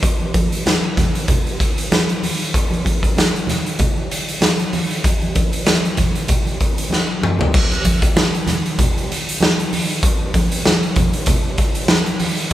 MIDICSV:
0, 0, Header, 1, 2, 480
1, 0, Start_track
1, 0, Tempo, 624350
1, 22, Time_signature, 4, 2, 24, 8
1, 9633, End_track
2, 0, Start_track
2, 0, Title_t, "Drums"
2, 21, Note_on_c, 9, 36, 110
2, 23, Note_on_c, 9, 42, 91
2, 31, Note_on_c, 9, 62, 38
2, 98, Note_off_c, 9, 36, 0
2, 100, Note_off_c, 9, 42, 0
2, 107, Note_off_c, 9, 62, 0
2, 159, Note_on_c, 9, 63, 60
2, 236, Note_off_c, 9, 63, 0
2, 263, Note_on_c, 9, 42, 65
2, 263, Note_on_c, 9, 63, 87
2, 264, Note_on_c, 9, 36, 85
2, 340, Note_off_c, 9, 42, 0
2, 340, Note_off_c, 9, 63, 0
2, 341, Note_off_c, 9, 36, 0
2, 403, Note_on_c, 9, 42, 60
2, 480, Note_off_c, 9, 42, 0
2, 507, Note_on_c, 9, 62, 40
2, 507, Note_on_c, 9, 63, 89
2, 510, Note_on_c, 9, 42, 71
2, 514, Note_on_c, 9, 38, 89
2, 584, Note_off_c, 9, 62, 0
2, 584, Note_off_c, 9, 63, 0
2, 587, Note_off_c, 9, 42, 0
2, 591, Note_off_c, 9, 38, 0
2, 645, Note_on_c, 9, 62, 35
2, 722, Note_off_c, 9, 62, 0
2, 747, Note_on_c, 9, 38, 34
2, 748, Note_on_c, 9, 42, 70
2, 749, Note_on_c, 9, 36, 89
2, 752, Note_on_c, 9, 63, 68
2, 752, Note_on_c, 9, 64, 72
2, 824, Note_off_c, 9, 38, 0
2, 825, Note_off_c, 9, 36, 0
2, 825, Note_off_c, 9, 42, 0
2, 829, Note_off_c, 9, 63, 0
2, 829, Note_off_c, 9, 64, 0
2, 885, Note_on_c, 9, 42, 57
2, 962, Note_off_c, 9, 42, 0
2, 983, Note_on_c, 9, 42, 90
2, 986, Note_on_c, 9, 36, 106
2, 999, Note_on_c, 9, 64, 88
2, 1060, Note_off_c, 9, 42, 0
2, 1063, Note_off_c, 9, 36, 0
2, 1076, Note_off_c, 9, 64, 0
2, 1127, Note_on_c, 9, 42, 39
2, 1132, Note_on_c, 9, 62, 31
2, 1204, Note_off_c, 9, 42, 0
2, 1209, Note_off_c, 9, 62, 0
2, 1231, Note_on_c, 9, 36, 100
2, 1234, Note_on_c, 9, 42, 76
2, 1308, Note_off_c, 9, 36, 0
2, 1311, Note_off_c, 9, 42, 0
2, 1367, Note_on_c, 9, 42, 59
2, 1444, Note_off_c, 9, 42, 0
2, 1474, Note_on_c, 9, 62, 41
2, 1474, Note_on_c, 9, 63, 94
2, 1475, Note_on_c, 9, 42, 73
2, 1477, Note_on_c, 9, 38, 103
2, 1551, Note_off_c, 9, 62, 0
2, 1551, Note_off_c, 9, 63, 0
2, 1552, Note_off_c, 9, 42, 0
2, 1554, Note_off_c, 9, 38, 0
2, 1610, Note_on_c, 9, 42, 38
2, 1612, Note_on_c, 9, 62, 41
2, 1687, Note_off_c, 9, 42, 0
2, 1689, Note_off_c, 9, 62, 0
2, 1713, Note_on_c, 9, 63, 67
2, 1717, Note_on_c, 9, 46, 94
2, 1790, Note_off_c, 9, 63, 0
2, 1794, Note_off_c, 9, 46, 0
2, 1858, Note_on_c, 9, 42, 46
2, 1934, Note_off_c, 9, 42, 0
2, 1955, Note_on_c, 9, 36, 113
2, 1958, Note_on_c, 9, 42, 98
2, 2032, Note_off_c, 9, 36, 0
2, 2035, Note_off_c, 9, 42, 0
2, 2080, Note_on_c, 9, 62, 38
2, 2080, Note_on_c, 9, 63, 59
2, 2101, Note_on_c, 9, 42, 36
2, 2157, Note_off_c, 9, 62, 0
2, 2157, Note_off_c, 9, 63, 0
2, 2178, Note_off_c, 9, 42, 0
2, 2189, Note_on_c, 9, 63, 84
2, 2199, Note_on_c, 9, 36, 78
2, 2203, Note_on_c, 9, 42, 62
2, 2266, Note_off_c, 9, 63, 0
2, 2275, Note_off_c, 9, 36, 0
2, 2280, Note_off_c, 9, 42, 0
2, 2329, Note_on_c, 9, 36, 92
2, 2336, Note_on_c, 9, 42, 55
2, 2406, Note_off_c, 9, 36, 0
2, 2413, Note_off_c, 9, 42, 0
2, 2437, Note_on_c, 9, 62, 36
2, 2437, Note_on_c, 9, 63, 87
2, 2444, Note_on_c, 9, 42, 71
2, 2448, Note_on_c, 9, 38, 91
2, 2514, Note_off_c, 9, 62, 0
2, 2514, Note_off_c, 9, 63, 0
2, 2521, Note_off_c, 9, 42, 0
2, 2525, Note_off_c, 9, 38, 0
2, 2564, Note_on_c, 9, 62, 31
2, 2582, Note_on_c, 9, 42, 36
2, 2641, Note_off_c, 9, 62, 0
2, 2659, Note_off_c, 9, 42, 0
2, 2670, Note_on_c, 9, 63, 77
2, 2670, Note_on_c, 9, 64, 74
2, 2685, Note_on_c, 9, 38, 37
2, 2686, Note_on_c, 9, 42, 74
2, 2747, Note_off_c, 9, 63, 0
2, 2747, Note_off_c, 9, 64, 0
2, 2761, Note_off_c, 9, 38, 0
2, 2763, Note_off_c, 9, 42, 0
2, 2816, Note_on_c, 9, 42, 47
2, 2893, Note_off_c, 9, 42, 0
2, 2913, Note_on_c, 9, 42, 92
2, 2915, Note_on_c, 9, 62, 39
2, 2915, Note_on_c, 9, 64, 82
2, 2919, Note_on_c, 9, 36, 104
2, 2990, Note_off_c, 9, 42, 0
2, 2992, Note_off_c, 9, 62, 0
2, 2992, Note_off_c, 9, 64, 0
2, 2996, Note_off_c, 9, 36, 0
2, 3056, Note_on_c, 9, 62, 36
2, 3133, Note_off_c, 9, 62, 0
2, 3163, Note_on_c, 9, 42, 80
2, 3240, Note_off_c, 9, 42, 0
2, 3293, Note_on_c, 9, 42, 57
2, 3370, Note_off_c, 9, 42, 0
2, 3390, Note_on_c, 9, 63, 88
2, 3395, Note_on_c, 9, 42, 85
2, 3397, Note_on_c, 9, 38, 92
2, 3467, Note_off_c, 9, 63, 0
2, 3472, Note_off_c, 9, 42, 0
2, 3474, Note_off_c, 9, 38, 0
2, 3532, Note_on_c, 9, 42, 35
2, 3532, Note_on_c, 9, 62, 40
2, 3609, Note_off_c, 9, 42, 0
2, 3609, Note_off_c, 9, 62, 0
2, 3635, Note_on_c, 9, 46, 88
2, 3639, Note_on_c, 9, 63, 76
2, 3712, Note_off_c, 9, 46, 0
2, 3716, Note_off_c, 9, 63, 0
2, 3773, Note_on_c, 9, 42, 47
2, 3849, Note_off_c, 9, 42, 0
2, 3876, Note_on_c, 9, 42, 91
2, 3878, Note_on_c, 9, 36, 125
2, 3884, Note_on_c, 9, 62, 33
2, 3953, Note_off_c, 9, 42, 0
2, 3955, Note_off_c, 9, 36, 0
2, 3961, Note_off_c, 9, 62, 0
2, 4009, Note_on_c, 9, 42, 37
2, 4010, Note_on_c, 9, 62, 35
2, 4010, Note_on_c, 9, 63, 58
2, 4086, Note_off_c, 9, 42, 0
2, 4087, Note_off_c, 9, 62, 0
2, 4087, Note_off_c, 9, 63, 0
2, 4115, Note_on_c, 9, 42, 61
2, 4116, Note_on_c, 9, 63, 90
2, 4119, Note_on_c, 9, 36, 92
2, 4192, Note_off_c, 9, 42, 0
2, 4192, Note_off_c, 9, 63, 0
2, 4196, Note_off_c, 9, 36, 0
2, 4250, Note_on_c, 9, 42, 57
2, 4327, Note_off_c, 9, 42, 0
2, 4352, Note_on_c, 9, 42, 76
2, 4356, Note_on_c, 9, 38, 107
2, 4367, Note_on_c, 9, 62, 39
2, 4367, Note_on_c, 9, 63, 85
2, 4429, Note_off_c, 9, 42, 0
2, 4433, Note_off_c, 9, 38, 0
2, 4444, Note_off_c, 9, 62, 0
2, 4444, Note_off_c, 9, 63, 0
2, 4499, Note_on_c, 9, 42, 37
2, 4500, Note_on_c, 9, 62, 36
2, 4576, Note_off_c, 9, 42, 0
2, 4577, Note_off_c, 9, 62, 0
2, 4591, Note_on_c, 9, 42, 81
2, 4594, Note_on_c, 9, 63, 78
2, 4594, Note_on_c, 9, 64, 76
2, 4600, Note_on_c, 9, 36, 86
2, 4668, Note_off_c, 9, 42, 0
2, 4671, Note_off_c, 9, 63, 0
2, 4671, Note_off_c, 9, 64, 0
2, 4677, Note_off_c, 9, 36, 0
2, 4731, Note_on_c, 9, 42, 52
2, 4808, Note_off_c, 9, 42, 0
2, 4830, Note_on_c, 9, 42, 92
2, 4832, Note_on_c, 9, 64, 80
2, 4837, Note_on_c, 9, 36, 111
2, 4907, Note_off_c, 9, 42, 0
2, 4909, Note_off_c, 9, 64, 0
2, 4914, Note_off_c, 9, 36, 0
2, 4969, Note_on_c, 9, 62, 37
2, 4976, Note_on_c, 9, 42, 38
2, 5045, Note_off_c, 9, 62, 0
2, 5053, Note_off_c, 9, 42, 0
2, 5078, Note_on_c, 9, 42, 72
2, 5079, Note_on_c, 9, 36, 91
2, 5155, Note_off_c, 9, 42, 0
2, 5156, Note_off_c, 9, 36, 0
2, 5212, Note_on_c, 9, 42, 59
2, 5289, Note_off_c, 9, 42, 0
2, 5305, Note_on_c, 9, 63, 83
2, 5325, Note_on_c, 9, 38, 51
2, 5382, Note_off_c, 9, 63, 0
2, 5402, Note_off_c, 9, 38, 0
2, 5442, Note_on_c, 9, 62, 37
2, 5519, Note_off_c, 9, 62, 0
2, 5549, Note_on_c, 9, 63, 75
2, 5562, Note_on_c, 9, 45, 100
2, 5626, Note_off_c, 9, 63, 0
2, 5639, Note_off_c, 9, 45, 0
2, 5681, Note_on_c, 9, 64, 76
2, 5695, Note_on_c, 9, 43, 90
2, 5758, Note_off_c, 9, 64, 0
2, 5772, Note_off_c, 9, 43, 0
2, 5792, Note_on_c, 9, 62, 34
2, 5798, Note_on_c, 9, 36, 126
2, 5801, Note_on_c, 9, 49, 110
2, 5869, Note_off_c, 9, 62, 0
2, 5875, Note_off_c, 9, 36, 0
2, 5878, Note_off_c, 9, 49, 0
2, 5928, Note_on_c, 9, 62, 42
2, 5933, Note_on_c, 9, 42, 40
2, 6005, Note_off_c, 9, 62, 0
2, 6010, Note_off_c, 9, 42, 0
2, 6032, Note_on_c, 9, 63, 92
2, 6033, Note_on_c, 9, 42, 68
2, 6037, Note_on_c, 9, 36, 81
2, 6109, Note_off_c, 9, 63, 0
2, 6110, Note_off_c, 9, 42, 0
2, 6114, Note_off_c, 9, 36, 0
2, 6167, Note_on_c, 9, 36, 106
2, 6173, Note_on_c, 9, 42, 59
2, 6244, Note_off_c, 9, 36, 0
2, 6250, Note_off_c, 9, 42, 0
2, 6275, Note_on_c, 9, 62, 44
2, 6275, Note_on_c, 9, 63, 100
2, 6279, Note_on_c, 9, 38, 113
2, 6352, Note_off_c, 9, 62, 0
2, 6352, Note_off_c, 9, 63, 0
2, 6356, Note_off_c, 9, 38, 0
2, 6415, Note_on_c, 9, 42, 40
2, 6492, Note_off_c, 9, 42, 0
2, 6509, Note_on_c, 9, 63, 72
2, 6509, Note_on_c, 9, 64, 73
2, 6514, Note_on_c, 9, 38, 41
2, 6515, Note_on_c, 9, 42, 77
2, 6586, Note_off_c, 9, 63, 0
2, 6586, Note_off_c, 9, 64, 0
2, 6591, Note_off_c, 9, 38, 0
2, 6592, Note_off_c, 9, 42, 0
2, 6655, Note_on_c, 9, 42, 47
2, 6732, Note_off_c, 9, 42, 0
2, 6753, Note_on_c, 9, 62, 45
2, 6753, Note_on_c, 9, 64, 92
2, 6756, Note_on_c, 9, 36, 122
2, 6758, Note_on_c, 9, 42, 101
2, 6830, Note_off_c, 9, 62, 0
2, 6830, Note_off_c, 9, 64, 0
2, 6833, Note_off_c, 9, 36, 0
2, 6835, Note_off_c, 9, 42, 0
2, 6892, Note_on_c, 9, 62, 36
2, 6902, Note_on_c, 9, 42, 42
2, 6969, Note_off_c, 9, 62, 0
2, 6979, Note_off_c, 9, 42, 0
2, 7009, Note_on_c, 9, 42, 75
2, 7086, Note_off_c, 9, 42, 0
2, 7140, Note_on_c, 9, 42, 60
2, 7217, Note_off_c, 9, 42, 0
2, 7230, Note_on_c, 9, 62, 41
2, 7230, Note_on_c, 9, 63, 97
2, 7246, Note_on_c, 9, 38, 102
2, 7307, Note_off_c, 9, 62, 0
2, 7307, Note_off_c, 9, 63, 0
2, 7323, Note_off_c, 9, 38, 0
2, 7371, Note_on_c, 9, 62, 38
2, 7377, Note_on_c, 9, 42, 41
2, 7448, Note_off_c, 9, 62, 0
2, 7454, Note_off_c, 9, 42, 0
2, 7478, Note_on_c, 9, 46, 96
2, 7480, Note_on_c, 9, 63, 69
2, 7555, Note_off_c, 9, 46, 0
2, 7557, Note_off_c, 9, 63, 0
2, 7615, Note_on_c, 9, 42, 51
2, 7691, Note_off_c, 9, 42, 0
2, 7710, Note_on_c, 9, 36, 127
2, 7710, Note_on_c, 9, 42, 106
2, 7720, Note_on_c, 9, 62, 36
2, 7787, Note_off_c, 9, 36, 0
2, 7787, Note_off_c, 9, 42, 0
2, 7797, Note_off_c, 9, 62, 0
2, 7950, Note_on_c, 9, 42, 68
2, 7951, Note_on_c, 9, 36, 89
2, 7957, Note_on_c, 9, 63, 89
2, 8027, Note_off_c, 9, 42, 0
2, 8028, Note_off_c, 9, 36, 0
2, 8034, Note_off_c, 9, 63, 0
2, 8085, Note_on_c, 9, 42, 61
2, 8162, Note_off_c, 9, 42, 0
2, 8192, Note_on_c, 9, 38, 99
2, 8198, Note_on_c, 9, 62, 42
2, 8198, Note_on_c, 9, 63, 91
2, 8268, Note_off_c, 9, 38, 0
2, 8275, Note_off_c, 9, 62, 0
2, 8275, Note_off_c, 9, 63, 0
2, 8326, Note_on_c, 9, 42, 38
2, 8403, Note_off_c, 9, 42, 0
2, 8424, Note_on_c, 9, 42, 81
2, 8429, Note_on_c, 9, 36, 93
2, 8430, Note_on_c, 9, 63, 77
2, 8430, Note_on_c, 9, 64, 83
2, 8501, Note_off_c, 9, 42, 0
2, 8506, Note_off_c, 9, 36, 0
2, 8507, Note_off_c, 9, 63, 0
2, 8507, Note_off_c, 9, 64, 0
2, 8559, Note_on_c, 9, 42, 54
2, 8636, Note_off_c, 9, 42, 0
2, 8657, Note_on_c, 9, 42, 106
2, 8664, Note_on_c, 9, 36, 113
2, 8670, Note_on_c, 9, 62, 43
2, 8670, Note_on_c, 9, 64, 91
2, 8734, Note_off_c, 9, 42, 0
2, 8741, Note_off_c, 9, 36, 0
2, 8747, Note_off_c, 9, 62, 0
2, 8747, Note_off_c, 9, 64, 0
2, 8900, Note_on_c, 9, 42, 75
2, 8905, Note_on_c, 9, 36, 96
2, 8977, Note_off_c, 9, 42, 0
2, 8982, Note_off_c, 9, 36, 0
2, 9032, Note_on_c, 9, 42, 61
2, 9109, Note_off_c, 9, 42, 0
2, 9136, Note_on_c, 9, 38, 103
2, 9140, Note_on_c, 9, 63, 103
2, 9212, Note_off_c, 9, 38, 0
2, 9217, Note_off_c, 9, 63, 0
2, 9272, Note_on_c, 9, 62, 43
2, 9274, Note_on_c, 9, 42, 40
2, 9349, Note_off_c, 9, 62, 0
2, 9350, Note_off_c, 9, 42, 0
2, 9375, Note_on_c, 9, 46, 101
2, 9382, Note_on_c, 9, 63, 70
2, 9452, Note_off_c, 9, 46, 0
2, 9459, Note_off_c, 9, 63, 0
2, 9513, Note_on_c, 9, 42, 52
2, 9590, Note_off_c, 9, 42, 0
2, 9633, End_track
0, 0, End_of_file